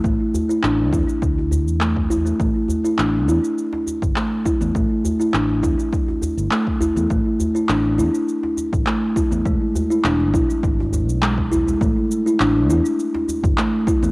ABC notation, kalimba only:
X:1
M:4/4
L:1/16
Q:1/4=102
K:Em
V:1 name="Kalimba"
A, z2 E D z E4 z2 A, z E A, | A, z2 E D z E4 z2 A, z E A, | A, z2 E D z E4 z2 A, z E A, | A, z2 E D z E4 z2 A, z E A, |
^G, z2 E D z E4 z2 G, z E G, | A, z2 E D z E4 z2 A, z E A, |]